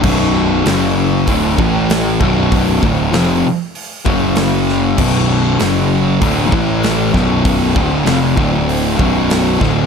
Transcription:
<<
  \new Staff \with { instrumentName = "Distorted electric guitar" } { \clef bass \time 4/4 \key b \minor \tempo 4 = 97 <b,, fis, b,>4 <fis, cis fis>4 <d, a, d>8 <a, e a>4 <b,, fis, b,>8~ | <b,, fis, b,>8 <d, a, d>8 <eis, c eis>8 r4 <fis, cis fis>4. | <b,, fis, b,>4 <fis, cis fis>4 <d, a, d>8 <a, e a>4 <b,, fis, b,>8~ | <b,, fis, b,>8 <d, a, d>8 <eis, c eis>8 <d, a, d>4 <b,, fis, b,>4 <d, a, d>8 | }
  \new Staff \with { instrumentName = "Distorted electric guitar" } { \clef bass \time 4/4 \key b \minor <b,, fis, b,>4 <fis, cis fis>4 <d, a, d>8 <a, e a>4 <b,, fis, b,>8~ | <b,, fis, b,>8 <d, a, d>8 <eis, c eis>8 r4 <fis, cis fis>4. | <b,, fis, b,>4 <fis, cis fis>4 <d, a, d>8 <a, e a>4 <b,, fis, b,>8~ | <b,, fis, b,>8 <d, a, d>8 <eis, c eis>8 <d, a, d>4 <b,, fis, b,>4 <d, a, d>8 | }
  \new Staff \with { instrumentName = "Picked electric bass" } { \clef bass \time 4/4 \key b \minor b,,,4 fis,,4 d,,8 a,,4 b,,,8~ | b,,,8 d,,8 eis,,8 r4 fis,,4. | b,,,4 fis,,4 d,,8 a,,4 b,,,8~ | b,,,8 d,,8 eis,,8 d,,4 b,,,4 d,,8 | }
  \new DrumStaff \with { instrumentName = "Drums" } \drummode { \time 4/4 <cymc bd>4 <hho sn>4 <hho bd>8 bd8 <hho sn>8 bd8 | <hho bd>8 bd8 <hho sn>4 hho8 bd8 <hho sn>8 sn8 | <cymc bd>4 <hho sn>4 <hho bd>8 bd8 <hho sn>8 <bd sn>8 | <hho bd>8 bd8 <hho sn>8 bd8 hho8 bd8 <hho sn>8 <bd sn>8 | }
>>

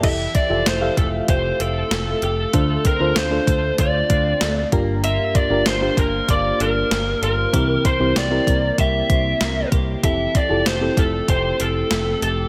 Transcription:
<<
  \new Staff \with { instrumentName = "Lead electric guitar" } { \time 4/4 \key f \major \tempo 4 = 96 e''8 d''8 c''8 a'8 c''8 a'4 a'8~ | a'8 bes'8 c''4 d''4. r8 | e''8 d''8 c''8 bes'8 d''8 bes'4 bes'8~ | bes'8 c''8 d''4 e''4. r8 |
e''8 d''8 c''8 a'8 c''8 a'4 a'8 | }
  \new Staff \with { instrumentName = "FM electric piano" } { \time 4/4 \key f \major <e' g' a' e''>8 r16 <f' g' a' e''>8 <g' a' e'' f''>4. r4 r16 | <d' f' a' c''>8 r16 <d' f' a' c''>8 <d' f' a' c''>4. r8. <d' f' g' bes'>8~ | <d' f' g' bes'>8 r16 <d' f' g' bes'>8 <d' f' g' c''>4. r4 r16 | <c' e' g' bes'>8 r16 <c' e' g' c''>8 <c' e' g' bes'>4. r4 r16 |
<c' e' g' a'>8 r16 <e' f' g' a'>8 <c' e' g' a'>4. r4 r16 | }
  \new Staff \with { instrumentName = "FM electric piano" } { \clef bass \time 4/4 \key f \major r1 | d4. r2 g,8~ | g,4 r2. | c4. r2 r8 |
r1 | }
  \new Staff \with { instrumentName = "Clean electric guitar" } { \time 4/4 \key f \major <e g'>8 c'8 f'16 g'16 a8 g'8 c'8 a8 g'8 | <a f'>8 c'8 f'8 a8 f'8 c'8 a8 bes8 | <bes f'>8 d'8 f'8 bes8 f'8 d'8 bes8 f'8 | <e g'>8 c'8 g'8 bes8 g'8 c'8 bes8 g'8 |
<e g'>8 c'8 g'8 a8 g'8 c'8 a8 g'8 | }
  \new Staff \with { instrumentName = "Picked electric bass" } { \clef bass \time 4/4 \key f \major f,,8 r16 f,,16 f,,8 f,,8 f,,8 f,,8 f,,8 f,,8 | d,8 r16 d,16 r8 d,8 d,8 d,8 d,8 g,,8~ | g,,8 r16 g,,16 g,,8 g,,8 g,,8 g,,8 g,,8 g,,8 | c,8 r16 c,16 c,8 c,8 c,8 c,8 c,8 c,8 |
f,,8 r16 f,,16 f,,8 f,,8 f,,8 f,,8 f,,8 f,,8 | }
  \new DrumStaff \with { instrumentName = "Drums" } \drummode { \time 4/4 <cymc hh bd>8 <hh bd>8 <hh sn>8 <hh bd>8 <hh bd>8 hh8 <hh sn>8 hh8 | <hh bd>8 <hh bd>8 <hh sn>8 <hh bd>8 <hh bd>8 <hh bd>8 <hh sn>8 <hh bd>8 | hh8 <hh bd>8 <hh sn>8 <hh bd>8 <hh bd>8 hh8 <hh sn>8 hh8 | <hh bd>8 <hh bd>8 <hh sn>8 <hh bd>8 <hh bd>8 <hh bd>8 <hh sn>8 <hh bd>8 |
<hh bd>8 <hh bd>8 <hh sn>8 <hh bd>8 <hh bd>8 hh8 <hh sn>8 hh8 | }
>>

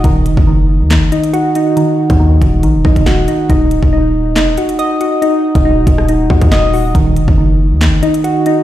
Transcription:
<<
  \new Staff \with { instrumentName = "Synth keys" } { \time 4/4 \key ees \minor \tempo 4 = 139 ees4 ees4 ees8 ees'8 ges'8 ees'8 | ees4 ees4 ees8 ees'8 ges'8 ees'8 | ees'4 ees'4 ees'8 ges'8 ees''8 ges'8 | ees'4 ees'4 ees'8 ges'8 ees''8 ges'8 |
ees4 ees4 ees8 ees'8 ges'8 ees'8 | }
  \new Staff \with { instrumentName = "808-style bass" } { \clef bass \time 4/4 \key ees \minor ees,,8 f,,16 ges,,4 ees,16. ges,,16. r4. | r8. ees,8. ees,,8 bes,,16 ees,,16 bes,,16 ees,,16 ees,,8 r8 | ees,,8 d,,16 ees,,4~ ees,,16 f,,16 ees,,16 r4. | r8. ees,,8. ees,,4 ees,16 ees,16 ees,,4 |
ees,,8 f,,16 ges,,4 ees,16. ges,,16. r4. | }
  \new DrumStaff \with { instrumentName = "Drums" } \drummode { \time 4/4 <hh bd>8 hh16 bd16 r4 <hc hh sn>8 hh16 hh16 hh8 hh8 | hh8. <hh bd>16 r8 <hh bd>8 hh8 bd16 <hh bd>16 <hc hh sn>8 hh8 | <hh bd>8 hh16 bd16 r4 <hc hh sn>8 hh16 hh16 hh8 hh8 | hh8. <hh bd>16 r8 <hh bd>16 ss16 hh8 bd16 <hh bd>16 <hc hh sn>8 hho8 |
<hh bd>8 hh16 bd16 r4 <hc hh sn>8 hh16 hh16 hh8 hh8 | }
>>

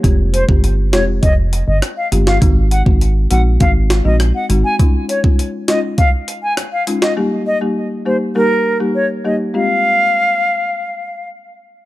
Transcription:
<<
  \new Staff \with { instrumentName = "Flute" } { \time 4/4 \key f \minor \tempo 4 = 101 r8 c''16 r8. des''16 r16 ees''16 r8 ees''16 r16 f''16 r16 f''16 | r8 ges''16 r8. ges''16 r16 f''16 r8 ees''16 r16 ges''16 r16 aes''16 | r8 des''16 r8. ees''16 r16 f''16 r8 aes''16 r16 f''16 r16 ees''16 | r8 ees''16 r8. c''16 r16 bes'8. r16 des''16 r16 ees''16 r16 |
f''2. r4 | }
  \new Staff \with { instrumentName = "Marimba" } { \time 4/4 \key f \minor <aes c' f' g'>8. <aes c' f' g'>16 r8 <aes c' f' g'>16 r4. r16 <aes c' f' g'>16 r16 | <aes c' ees' ges'>8. <aes c' ees' ges'>8. <aes c' ees' ges'>8 <aes c' ees' ges'>8. <aes c' ees' ges'>16 r8 <aes c' ees' ges'>16 r16 | <aes des' ees' f'>8. <aes des' ees' f'>16 r8 <aes des' ees' f'>16 r4. r16 <aes des' ees' f'>16 r16 | <g bes ees' g'>8. <g bes ees' g'>8. <g bes ees' g'>8 <g bes ees' g'>8. <g bes ees' g'>16 r8 <g bes ees' g'>16 r16 |
<aes c' f' g'>1 | }
  \new Staff \with { instrumentName = "FM bass" } { \clef bass \time 4/4 \key f \minor f,,8. g,,8. f,,8 f,,8. g,,16 r8 g,,8 | aes,,8. aes,,8. bes,,8 aes,,8. bes,,8 r16 aes,,16 r16 | r1 | r1 |
r1 | }
  \new DrumStaff \with { instrumentName = "Drums" } \drummode { \time 4/4 <hh bd>8 hh16 bd16 hh8 <hh sn>8 <hh bd>8 hh8 <hh ss>8 hh16 sn16 | <hh bd>8 hh16 bd16 hh8 hh8 <hh bd>8 <hh sn>8 <hh ss>8 hh8 | <hh bd>8 hh16 bd16 hh8 <hh sn>8 <hh bd>8 hh8 <hh ss>8 hh16 sn16 | r4 r4 r4 r4 |
r4 r4 r4 r4 | }
>>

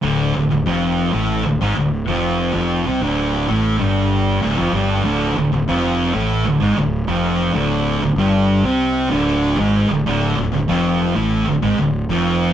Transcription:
<<
  \new Staff \with { instrumentName = "Distorted electric guitar" } { \clef bass \time 4/4 \key d \minor \tempo 4 = 96 <d, d>8 d,16 d,16 <f, f>8. <a, a>8 d,16 <gis, gis>16 d,8 <f, f>8. | <f, f>8 <c c'>16 <d, d>8. <a, a>8 <g, g>4 <d, d>16 <f, f>16 <g, g>8 | <d, d>8 d,16 d,16 <f, f>8. <a, a>8 d,16 <gis, gis>16 d,8 <f, f>8. | <d, d>8. d,16 <g, g>8. <c c'>8. <d, d>8. <gis, gis>8 d,16 |
<d, d>8 d,16 d,16 <f, f>8. <a, a>8 d,16 <gis, gis>16 d,8 <f, f>8. | }
  \new Staff \with { instrumentName = "Distorted electric guitar" } { \clef bass \time 4/4 \key d \minor <d, d>8 d,16 d,16 <f, f>8. <a, a>8 d,16 <gis, gis>16 d,8 <f, f>8. | <f, f>8 <c c'>16 <d, d>8. <a, a>8 <g, g>4 <d, d>16 <f, f>16 <g, g>8 | <d, d>8 d,16 d,16 <f, f>8. <a, a>8 d,16 <gis, gis>16 d,8 <f, f>8. | <d, d>8. d,16 <g, g>8. <c c'>8. <d, d>8. <gis, gis>8 d,16 |
<d, d>8 d,16 d,16 <f, f>8. <a, a>8 d,16 <gis, gis>16 d,8 <f, f>8. | }
  \new Staff \with { instrumentName = "Fingered electric bass" } { \clef bass \time 4/4 \key d \minor d,,8 d,,16 d,,16 f,,8. a,,8 d,,16 gis,,16 d,,8 f,,8. | f,,8 c,16 d,,8. a,,8 g,,4 d,,16 f,,16 g,,8 | d,,8 d,,16 d,,16 f,,8. a,,8 d,,16 gis,,16 d,,8 f,,8. | d,,8. d,,16 g,,8. c,8. d,,8. gis,,8 d,,16 |
d,,8 d,,16 d,,16 f,,8. a,,8 d,,16 gis,,16 d,,8 f,,8. | }
>>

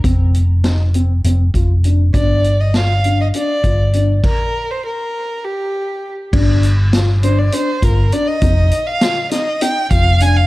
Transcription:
<<
  \new Staff \with { instrumentName = "Violin" } { \time 7/8 \key g \minor \tempo 4 = 100 r2. r8 | d''8. ees''16 f''8. ees''16 d''4 r8 | bes'8. c''16 bes'4 g'4 r8 | r4. c''16 d''16 c''8 bes'8 d''16 ees''16~ |
ees''8. f''8. ees''8 g''8 f''8 aes''16 f''16 | }
  \new Staff \with { instrumentName = "Grand piano" } { \time 7/8 \key g \minor c'4 ees'8 c'8 c'8 f'8 d'8 | d'4 f'8 d'8 d'8 f'8 d'8 | r2. r8 | d'4 f'8 d'8 d'8 f'8 d'8 |
ees'4 f'8 ees'8 ees'8 f'8 d'8 | }
  \new Staff \with { instrumentName = "Fingered electric bass" } { \clef bass \time 7/8 \key g \minor f,,2 f,,8 f,,4 | g,,2 r8 g,,4 | r2. r8 | g,,2 r8 g,,8 r8 |
f,,8 r2 f,,4 | }
  \new DrumStaff \with { instrumentName = "Drums" } \drummode { \time 7/8 <hh bd>8 hh8 <hh sn>8 hh8 hh8 <hh bd>8 hh8 | <hh bd>8 hh8 <hh sn>8 hh8 hh8 <hh bd>8 hh8 | <cymc bd>4 r4 r4. | <cymc bd>8 hh8 <hh sn>8 hh8 hh8 <hh bd>8 hh8 |
<hh bd>8 hh8 <hh sn>8 <hh sn>8 hh8 <hh bd>8 hh8 | }
>>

